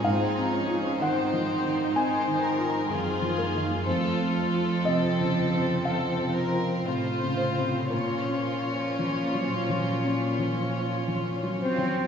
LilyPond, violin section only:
\new Staff \with { instrumentName = "Violin section" } { \time 4/4 \key bes \minor \tempo 4 = 60 << { aes'4 c''4 c''8 bes'8 aes'4 | a'8 a'4. a'8 bes'8 c''4 | des''1 | } \\ { ees'4 c'4 c'4 f'4 | f'4 c'4 c'4 f'4 | f'1 | } >> }